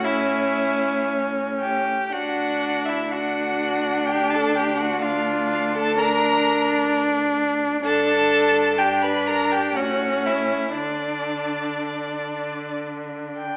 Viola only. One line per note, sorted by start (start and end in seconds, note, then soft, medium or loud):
0.04 1.87 C#4 medium
2.11 3.08 D4 soft
3.12 5.00 D4 medium
5.04 5.97 D4 soft
5.99 7.81 D4 medium
7.85 8.77 D4 medium
8.79 9.78 D4 medium
9.76 10.76 C#4 soft
10.77 13.57 D4 soft